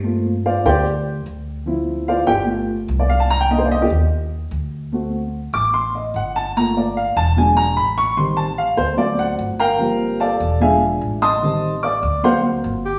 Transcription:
Already playing: G2
0.03 A3 A#3 C4 F4
0.46 F4 C5 D5 F5
0.65 D2 G4 C5 D5 G5
1.26 D2
1.66 F3 C4 E4
2.08 F4 C5 D5 F5
2.27 G1 G4 G5
2.46 A3 B3 F4
2.88 C2
3.00 D5
3.09 F5
3.20 A5
3.30 A#5
3.40 G5
3.50 A#3 D4 D#4 D#5
3.58 C5
3.65 D5
3.72 D#5
3.82 G4
3.90 D#2
4.51 D2
4.92 A3 C4 F#4
5.53 A1 D6
5.74 C6
5.95 D#5
6.14 G1 F#5
6.36 A5
6.56 A3 A#3 F4 A#5
6.77 D5
6.97 F5
7.16 E1 A5
7.37 F#3 G#3 D4 G#5
7.57 A#5
7.77 A1 B5
7.98 C#6
8.17 D#3 G3 C4 C6
8.37 A5
8.58 F5
8.77 D2 C5
8.97 F#3 A3 C4 D5
9.19 F#5
9.39 G1
9.60 A#4 F5 G5 A#5
9.79 F3 G3 A#3 C4
10.20 A4 D5 F5 A5
10.40 E1
10.60 F3 G#3 D4 G#4 E5 F5 G#5
11.01 A1
11.22 D#5 A5 C6 D#6
11.42 D#3 G3 C4
11.83 D5 D6
12.03 D2
12.23 F#3 A#3 C4 C5 F5 F#5 C6
12.64 G1
12.85 G4

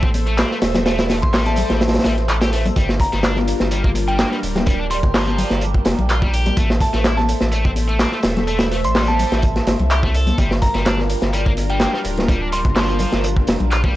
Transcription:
Already playing: A1 A3 A4 C5 E5
0.03 C4, kick
0.14 closed hi-hat, open hi-hat, high conga
0.27 A3, closed hi-hat
0.38 C4, snare, clap, closed hi-hat
0.51 A3, snare
0.62 E1, snare, closed hi-hat, open hi-hat
0.74 snare, closed hi-hat, high conga, low conga
0.86 A3, snare, closed hi-hat
0.99 E4, snare, closed hi-hat
1.10 A3, snare, closed hi-hat, open hi-hat
1.22 A1 C6, kick, closed hi-hat
1.34 G3 C6, snare, clap, closed hi-hat, open hi-hat
1.46 A5, closed hi-hat, high conga
1.56 closed hi-hat, open hi-hat, low conga
1.70 A1, snare, closed hi-hat
1.81 snare, closed hi-hat
1.88 snare, closed hi-hat
1.94 snare, closed hi-hat
1.99 snare, closed hi-hat
2.04 A1 G3, snare, closed hi-hat, open hi-hat, high conga
2.17 snare, closed hi-hat
2.28 A3, clap, closed hi-hat
2.41 G4, snare, closed hi-hat
2.52 A3, snare, open hi-hat
2.65 closed hi-hat, high conga, low conga
2.76 G1 G3 D4 F4 A#4, kick, closed hi-hat
2.89 snare
3.00 A#5, kick, closed hi-hat, open hi-hat
3.13 G1 G3, snare, closed hi-hat
3.23 D4, snare, clap, closed hi-hat
3.36 snare, high conga
3.48 closed hi-hat, open hi-hat
3.60 G1, snare, closed hi-hat
3.71 G3, closed hi-hat
3.84 A#3, kick
3.95 closed hi-hat, open hi-hat, high conga
4.08 G3 G5, closed hi-hat
4.19 A#3 G5, snare, clap, closed hi-hat
4.31 G3, snare
4.43 D1, closed hi-hat, open hi-hat
4.55 snare, closed hi-hat, high conga, low conga
4.66 G3 G4, kick, closed hi-hat
4.79 D4
4.91 G3 C6, closed hi-hat, open hi-hat
5.03 G1, kick, closed hi-hat
5.14 F3, snare, clap, closed hi-hat, open hi-hat
5.27 closed hi-hat, high conga
5.38 closed hi-hat, open hi-hat, low conga
5.50 G1, snare, closed hi-hat
5.61 closed hi-hat
5.74 kick
5.85 F1, snare, closed hi-hat, open hi-hat, high conga
5.98 A#1, closed hi-hat, low conga
6.09 F4, clap, closed hi-hat
6.22 G3, kick
6.33 G4, closed hi-hat, open hi-hat
6.46 closed hi-hat, high conga, low conga
6.57 A1 A3 A4 C5 E5, kick, closed hi-hat
6.70 snare
6.81 A5, kick, closed hi-hat, open hi-hat
6.93 A1 A3, snare, closed hi-hat
7.04 E4, snare, clap, closed hi-hat
7.17 A5, snare, high conga
7.29 closed hi-hat, open hi-hat
7.41 A1, snare, closed hi-hat
7.52 A3, closed hi-hat
7.65 C4, kick
7.76 closed hi-hat, open hi-hat, high conga
7.89 A3, closed hi-hat
7.99 C4, snare, clap, closed hi-hat
8.12 A3, snare
8.23 E1, snare, closed hi-hat, open hi-hat
8.37 snare, closed hi-hat, high conga, low conga
8.47 A3, closed hi-hat
8.59 E4, snare, closed hi-hat
8.72 A3, snare, open hi-hat
8.84 A1 C6, closed hi-hat
8.95 G3 C6, snare, clap, closed hi-hat, open hi-hat
9.07 A5, closed hi-hat, high conga
9.19 closed hi-hat, open hi-hat, low conga
9.32 A1, snare, closed hi-hat
9.42 kick, closed hi-hat
9.56 snare, closed hi-hat
9.66 G1, snare, closed hi-hat, open hi-hat, high conga
9.79 C2, closed hi-hat, low conga
9.90 G4, clap, closed hi-hat
10.03 A3, kick
10.14 A4, closed hi-hat, open hi-hat
10.27 closed hi-hat, high conga, low conga
10.38 G1 G3 D4 F4 A#4, kick, closed hi-hat
10.51 snare
10.62 A#5, kick, closed hi-hat, open hi-hat
10.74 G1 G3, snare, closed hi-hat
10.86 D4, snare, clap, closed hi-hat
10.98 snare, high conga
11.10 closed hi-hat, open hi-hat
11.22 G1, snare, closed hi-hat
11.33 G3, closed hi-hat
11.46 A#3, kick
11.57 closed hi-hat, open hi-hat, high conga
11.70 G3 G5, closed hi-hat
11.80 A#3 G5, snare, clap, closed hi-hat
11.94 G3, snare
12.04 D1, closed hi-hat, open hi-hat
12.17 snare, closed hi-hat, high conga, low conga
12.28 G3, kick, closed hi-hat
12.41 D4
12.52 G3 C6, closed hi-hat, open hi-hat
12.65 G1, kick, closed hi-hat
12.76 F3, snare, clap, closed hi-hat, open hi-hat
12.88 closed hi-hat, high conga
12.99 closed hi-hat, open hi-hat, low conga
13.12 G1, snare, closed hi-hat
13.24 closed hi-hat
13.37 kick
13.47 F1, snare, closed hi-hat, open hi-hat, high conga
13.60 A#1, closed hi-hat, low conga
13.71 F4, clap, closed hi-hat
13.84 G3, kick

